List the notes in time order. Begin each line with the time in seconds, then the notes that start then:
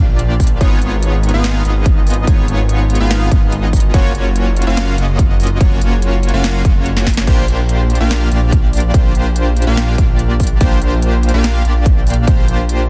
0.00 A#1 A#3 D4 F4 G4 D5
0.19 closed hi-hat
0.40 kick, closed hi-hat, open hi-hat
0.47 closed hi-hat
0.61 G#1 B3 D#4 F4 G#4 C#5, kick, closed hi-hat
0.81 G#1 B3 D#4 F4 G#4 C#5, closed hi-hat
1.03 closed hi-hat
1.23 closed hi-hat
1.29 closed hi-hat
1.34 G#1 B3 D#4 F4 G#4 F5
1.44 snare, closed hi-hat
1.65 G#1 B3 D#4 F4 G#4 D#5, closed hi-hat
1.86 kick, closed hi-hat
2.07 closed hi-hat, open hi-hat
2.14 closed hi-hat
2.27 G#1 B3 D#4 F4 G#4 C#5, kick, closed hi-hat
2.48 G#1 B3 D#4 F4 G#4 C#5, closed hi-hat
2.69 closed hi-hat
2.90 closed hi-hat
2.95 closed hi-hat
3.00 G#1 B3 D#4 F4 G#4 F5
3.11 snare, closed hi-hat
3.31 G#1 B3 D#4 F4 G#4 D#5, kick, closed hi-hat
3.52 closed hi-hat
3.73 kick, closed hi-hat, open hi-hat
3.80 closed hi-hat
3.94 F#1 A#3 C#4 F4 F#4 C#5, kick, closed hi-hat
4.15 F#1 A#3 C#4 F4 F#4 C#5, closed hi-hat
4.36 closed hi-hat
4.57 closed hi-hat
4.62 closed hi-hat
4.67 F#1 A#3 C#4 F4 F#4 F5
4.77 snare, closed hi-hat
4.98 F#1 A#3 C#4 F4 F#4 D#5, closed hi-hat
5.19 kick, closed hi-hat
5.40 closed hi-hat, open hi-hat
5.47 closed hi-hat
5.61 F#1 A#3 C#4 F4 F#4 C#5, kick, closed hi-hat
5.81 F#1 A#3 C#4 F4 F#4 C#5, closed hi-hat
6.02 closed hi-hat
6.23 closed hi-hat
6.29 closed hi-hat
6.34 F#1 A#3 C#4 F4 F#4 F5
6.44 snare, closed hi-hat
6.65 F#1 A#3 C#4 F4 F#4 D#5, kick, closed hi-hat
6.75 F#1 A#3 C#4 F4 F#4 C#5
6.86 closed hi-hat
6.97 snare
7.07 kick, snare, closed hi-hat, open hi-hat
7.14 snare, closed hi-hat
7.27 A#1 A#3 D4 F4 G4 C5, kick, closed hi-hat, crash
7.48 A#1 A#3 D4 F4 G4 C5, closed hi-hat
7.69 closed hi-hat
7.90 closed hi-hat
7.95 closed hi-hat
8.00 A#1 A#3 D4 F4 G4 F5
8.11 snare, closed hi-hat
8.31 A#1 A#3 D4 F4 G4 D5, closed hi-hat
8.52 kick, closed hi-hat
8.73 closed hi-hat, open hi-hat
8.80 closed hi-hat
8.94 A#1 A#3 D4 F4 G4 C5, kick, closed hi-hat
9.15 A#1 A#3 D4 F4 G4 C5, closed hi-hat
9.36 closed hi-hat
9.57 closed hi-hat
9.62 closed hi-hat
9.67 A#1 A#3 D4 F4 G4 F5
9.77 snare, closed hi-hat
9.98 A#1 A#3 D4 F4 G4 D5, kick, closed hi-hat
10.19 closed hi-hat
10.40 kick, closed hi-hat, open hi-hat
10.47 closed hi-hat
10.61 A#1 A#3 D4 F4 G4 C5, kick, closed hi-hat
10.81 A#1 A#3 D4 F4 G4 C5, closed hi-hat
11.02 closed hi-hat
11.23 closed hi-hat
11.29 closed hi-hat
11.34 A#1 A#3 D4 F4 G4 F5
11.44 snare, closed hi-hat
11.65 A#1 A#3 D4 F4 G4 D5, closed hi-hat
11.86 kick, closed hi-hat
12.07 closed hi-hat, open hi-hat
12.14 closed hi-hat
12.27 A#1 A#3 D4 F4 G4 C5, kick, closed hi-hat
12.48 A#1 A#3 D4 F4 G4 C5, closed hi-hat
12.69 closed hi-hat